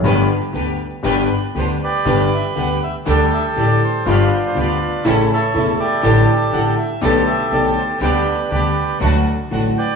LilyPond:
<<
  \new Staff \with { instrumentName = "Bandoneon" } { \time 4/4 \key g \major \tempo 4 = 120 << { r2 r8 b'8 c''8 d''8~ | d''8 e''8 fis''8 e''8 d''8 e''8 d''8 c''8 | b'8 c''32 d''32 c''16 d''4 r8 cis''4 d''8~ | d''4 fis''8 e''8 d''8 e''8 d''8 c''8 |
b'4 d''4 r4 fis''8 g''8 | } \\ { r2. r8 <g' b'>8~ | <g' b'>4. r8 <g' a'>2 | <d' f'>4 <f' b'>4 r8 <e' a'>4 <g' a'>8~ | <g' a'>4. r8 <g' a'>2 |
<d' g'>4 <g' b'>4 r4. <b' d''>8 | } >> }
  \new Staff \with { instrumentName = "String section" } { \time 4/4 \key g \major <d' g' b'>8 r8 <d' g' b'>8 r8 <d' g' b'>8 r8 <d' g' b'>8 r8 | <d' g' b'>8 r8 <d' g' b'>8 r8 <d' g' a'>8 r8 <d' g' a'>8 r8 | <b f' g'>8 r8 <b f' g'>8 r8 <cis' e' a'>8 r8 <cis' e' a'>8 r8 | <d' g' a'>8 r8 <d' g' a'>8 r8 <b g' a'>8 r8 <b g' a'>8 r8 |
<b d' g'>8 r8 <b d' g'>8 r8 <a d' fis'>8 r8 <a d' fis'>8 r8 | }
  \new Staff \with { instrumentName = "Grand piano" } { \clef bass \time 4/4 \key g \major <g,, g, d g b g'>8 r8 <d, d g b g'>8 r8 <g,, g, d g b g'>8 r8 <d, d g b g'>8 r8 | <g,, g, d g b g'>8 r8 <d, d g b g'>8 r8 <d, d g a g'>8 r8 <a,, a, d g a g'>8 r8 | <g,, g, d g b f'>8 r8 <d, d g b f'>8 r8 <a,, a, cis e a e'>8 r8 <e,, e, cis e a e'>8 r8 | <a,, a, d g a g'>8 r8 <a,, a, d g a g'>8 r8 <b,, b, d a b g'>8 r8 <b,, b, d a b g'>8 r8 |
<d, d g b g'>8 r8 <d, d g b g'>8 r8 <d, d fis a fis'>8 r8 <a,, a, d fis a fis'>8 r8 | }
  \new Staff \with { instrumentName = "Upright bass" } { \clef bass \time 4/4 \key g \major g,,8 r8 d,8 r8 g,,8 r8 d,8 r8 | g,,8 r8 d,8 r8 d,8 r8 a,,8 r8 | g,,8 r8 d,8 r8 a,,8 r8 e,,8 r8 | a,,8 r8 a,,8 r8 b,,8 r8 b,,8 r8 |
d,8 r8 d,8 r8 d,8 r8 a,,8 r8 | }
>>